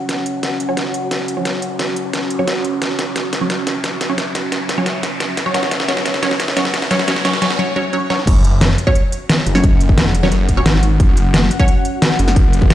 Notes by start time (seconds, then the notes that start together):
Already playing: F#3 C#4 F#4 C#5 F#5, riser
0.09 snare, closed hi-hat
0.26 closed hi-hat
0.43 snare, closed hi-hat
0.60 closed hi-hat
0.69 F#3 C#4 C#5
0.77 snare, closed hi-hat
0.94 closed hi-hat
1.11 snare, closed hi-hat
1.28 closed hi-hat
1.37 F#3 C#4 C#5
1.45 snare, closed hi-hat
1.62 closed hi-hat
1.79 snare, closed hi-hat
1.96 closed hi-hat
2.13 snare, closed hi-hat
2.30 closed hi-hat
2.39 F#3 C#4 C#5
2.48 snare, closed hi-hat
2.65 closed hi-hat
2.82 E5, snare, closed hi-hat
2.99 snare, closed hi-hat
3.16 snare, closed hi-hat
3.33 snare, closed hi-hat
3.41 F#3 C#4 C#5
3.50 snare, closed hi-hat
3.67 snare, closed hi-hat
3.84 snare, closed hi-hat
4.01 snare, closed hi-hat
4.09 F#3 C#4 C#5
4.18 snare, closed hi-hat
4.35 snare, closed hi-hat
4.52 snare, closed hi-hat
4.69 snare, closed hi-hat
4.78 F#3 C#4 C#5
4.86 snare, closed hi-hat
5.03 snare, closed hi-hat
5.20 snare, closed hi-hat
5.37 snare, closed hi-hat
5.46 F#3 C#4 C#5
5.54 F#3 C#4 C#5, snare, closed hi-hat
5.63 snare
5.71 snare, closed hi-hat
5.80 snare
5.88 F#3 C#4 C#5, snare, closed hi-hat
5.97 snare
6.06 snare, closed hi-hat
6.14 snare
6.23 F#3 C#4 C#5, snare, closed hi-hat
6.31 snare
6.40 snare, closed hi-hat
6.48 snare
6.57 F#3 C#4 C#5, snare, closed hi-hat
6.65 snare
6.74 snare, closed hi-hat
6.82 snare
6.91 F#3 C#4 C#5, snare, closed hi-hat
6.99 snare
7.08 F#3 C#4 C#5, snare, closed hi-hat
7.16 snare
7.25 F#3 C#4 C#5, snare, closed hi-hat
7.33 snare
7.42 F#3 C#4 C#5, snare, closed hi-hat
7.50 snare
7.59 F#3 C#4 C#5
7.76 F#3 C#4 C#5
7.93 F#3 C#4 C#5
8.10 F#3 C#4 C#5, snare
8.19 mid tom
8.27 F#1 C#4 F#4 F#5, kick, closed hi-hat, crash
8.44 closed hi-hat
8.61 snare, closed hi-hat
8.78 closed hi-hat
8.87 F#3 C#4 C#5, kick
8.95 closed hi-hat
9.12 closed hi-hat
9.29 snare, closed hi-hat
9.46 F#1, closed hi-hat
9.55 F#3 C#4 C#5, snare
9.64 kick, closed hi-hat
9.81 closed hi-hat
9.89 kick
9.98 snare, closed hi-hat
10.06 F1
10.15 closed hi-hat
10.23 F#3 C#4 C#5, snare
10.32 F#1, closed hi-hat
10.49 kick, closed hi-hat
10.57 F#3 C#4 C#5
10.66 G#1, snare, closed hi-hat
10.83 closed hi-hat
11.00 F#1, kick, closed hi-hat
11.17 closed hi-hat
11.34 snare, closed hi-hat
11.51 closed hi-hat
11.59 F#3 C#4 C#5, kick
11.68 closed hi-hat
11.85 closed hi-hat
12.02 snare, closed hi-hat
12.19 F#1, closed hi-hat
12.28 snare
12.36 kick, closed hi-hat
12.53 closed hi-hat
12.62 kick
12.70 snare, closed hi-hat